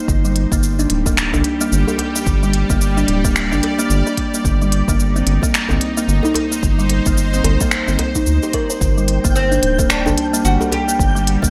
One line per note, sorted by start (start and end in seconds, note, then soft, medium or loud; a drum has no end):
0.00 1.81 C5 medium
0.08 0.46 G1 loud
0.08 4.45 G3 medium
0.08 kick loud
0.08 shaker medium
0.25 0.50 G3 medium
0.25 5.91 G4 medium
0.25 shaker soft
0.36 closed hi-hat medium
0.52 0.86 G1 medium
0.52 0.78 A#3 medium
0.52 kick loud
0.52 shaker medium
0.63 shaker medium
0.79 0.86 D4 medium
0.79 shaker soft
0.90 1.35 D1 medium
0.90 closed hi-hat medium
1.06 1.17 A#3 medium
1.06 kick loud
1.06 djembe tone medium
1.06 shaker medium
1.17 finger snap medium
1.17 shaker medium
1.33 1.42 G1 loud
1.33 1.59 D4 medium
1.33 djembe slap soft
1.33 djembe bass medium
1.33 shaker soft
1.44 closed hi-hat medium
1.61 1.87 A#3 loud
1.61 shaker medium
1.72 1.85 G1 loud
1.72 shaker medium
1.87 1.99 G4 medium
1.87 djembe tone medium
1.87 shaker soft
1.98 closed hi-hat medium
1.98 djembe slap soft
1.98 djembe tone medium
2.07 5.78 D5 medium
2.16 2.26 A#3 medium
2.16 shaker medium
2.26 2.64 G1 loud
2.26 kick loud
2.26 shaker medium
2.43 2.69 G3 medium
2.43 shaker soft
2.53 closed hi-hat medium
2.70 3.04 G1 medium
2.70 2.96 A#3 medium
2.70 kick loud
2.70 shaker medium
2.81 shaker medium
2.97 3.04 D4 medium
2.97 shaker soft
3.08 3.53 D1 medium
3.08 closed hi-hat medium
3.24 3.35 A#3 medium
3.24 kick loud
3.24 djembe slap soft
3.24 shaker medium
3.36 finger snap medium
3.36 shaker medium
3.52 3.60 G1 medium
3.52 3.78 D4 medium
3.52 djembe tone soft
3.52 shaker soft
3.63 closed hi-hat medium
3.63 djembe slap medium
3.79 4.05 A#3 loud
3.79 shaker medium
3.90 4.03 G1 loud
3.90 shaker soft
4.07 4.17 G4 medium
4.07 shaker soft
4.17 kick medium
4.17 closed hi-hat medium
4.34 4.45 A#3 medium
4.34 shaker medium
4.45 4.82 G1 loud
4.45 8.82 D#4 medium
4.45 kick loud
4.45 shaker medium
4.62 4.87 G3 medium
4.62 shaker soft
4.72 closed hi-hat medium
4.88 5.23 G1 medium
4.88 5.14 A#3 medium
4.88 kick loud
4.88 shaker medium
5.00 shaker medium
5.16 5.22 C4 medium
5.16 shaker soft
5.27 5.39 G1 medium
5.27 closed hi-hat medium
5.42 5.54 A#3 loud
5.42 kick medium
5.42 djembe tone medium
5.42 shaker medium
5.54 10.58 C5 medium
5.54 finger snap medium
5.54 shaker soft
5.69 5.78 G1 loud
5.69 5.96 C4 medium
5.69 djembe slap soft
5.69 djembe bass medium
5.69 shaker soft
5.81 closed hi-hat medium
5.97 6.23 A#3 medium
5.97 shaker medium
6.08 6.21 G1 loud
6.08 shaker soft
6.23 6.35 D#4 medium
6.23 djembe tone medium
6.23 shaker soft
6.34 closed hi-hat medium
6.34 djembe slap medium
6.34 djembe tone medium
6.51 6.62 A#3 medium
6.51 shaker medium
6.63 7.01 G1 loud
6.63 kick loud
6.63 shaker soft
6.79 7.05 G3 medium
6.79 shaker soft
6.89 closed hi-hat medium
6.89 djembe tone soft
7.06 7.41 G1 medium
7.06 7.32 A#3 loud
7.06 kick loud
7.06 shaker medium
7.18 shaker medium
7.34 7.40 C4 medium
7.34 shaker soft
7.44 7.57 G1 medium
7.44 closed hi-hat medium
7.44 djembe bass medium
7.61 7.72 A#3 medium
7.61 kick loud
7.61 djembe slap soft
7.61 djembe tone medium
7.61 shaker medium
7.71 finger snap medium
7.71 shaker medium
7.88 7.97 G1 medium
7.88 7.98 C4 medium
7.88 djembe tone soft
7.88 shaker soft
7.99 closed hi-hat medium
7.99 djembe slap medium
7.99 djembe bass medium
8.15 8.26 D#4 medium
8.15 kick medium
8.15 djembe slap soft
8.15 shaker medium
8.26 8.39 D2 medium
8.26 shaker medium
8.43 8.54 G4 medium
8.43 djembe slap soft
8.43 shaker soft
8.53 8.69 A#4 medium
8.53 kick medium
8.53 closed hi-hat loud
8.70 8.80 C5 medium
8.70 shaker medium
8.81 9.19 G1 loud
8.81 11.50 G3 medium
8.81 11.50 G5 medium
8.81 kick loud
8.81 shaker medium
8.97 9.23 G3 medium
8.97 shaker soft
9.08 closed hi-hat medium
9.24 9.59 G1 medium
9.24 9.50 A#3 medium
9.24 kick loud
9.24 shaker medium
9.36 9.86 C4 medium
9.36 shaker medium
9.52 9.58 D4 medium
9.52 shaker soft
9.63 10.08 D1 medium
9.63 11.50 G4 medium
9.63 closed hi-hat medium
9.78 9.89 A#3 medium
9.78 kick loud
9.78 djembe tone medium
9.78 shaker medium
9.90 10.44 D4 medium
9.90 finger snap medium
9.90 shaker medium
10.06 10.15 G1 medium
10.06 10.32 D4 medium
10.06 11.50 A#4 medium
10.06 djembe slap soft
10.06 djembe bass medium
10.06 shaker soft
10.18 closed hi-hat medium
10.33 10.59 A#3 loud
10.33 shaker medium
10.45 10.57 G1 loud
10.45 10.72 F#4 loud
10.45 shaker medium
10.61 10.72 G4 medium
10.61 djembe tone medium
10.61 shaker soft
10.72 11.50 G4 medium
10.72 closed hi-hat medium
10.72 djembe slap soft
10.72 djembe tone medium
10.79 11.50 D5 medium
10.88 10.99 A#3 medium
10.88 shaker medium
10.99 11.37 G1 loud
10.99 kick loud
10.99 shaker medium
11.15 11.41 G3 medium
11.15 shaker soft
11.27 closed hi-hat medium
11.42 11.50 G1 medium
11.42 11.50 A#3 medium
11.42 kick loud
11.42 shaker medium